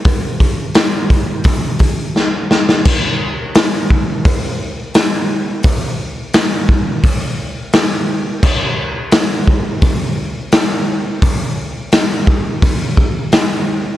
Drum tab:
CC |----------------|x---------------|----------------|x---------------|
HH |o-o-o-o-o-o-----|----o---o---o---|o---o---o---o---|----o---o---o---|
SD |----o-------o-oo|----o-------o---|----o-------o---|----o-------o---|
BD |o-o---o-o-o-----|o-----o-o-------|o-----o-o-------|o-----o-o-------|

CC |----------------|
HH |o---o---o---o---|
SD |----o-------o---|
BD |o-----o-o-o-----|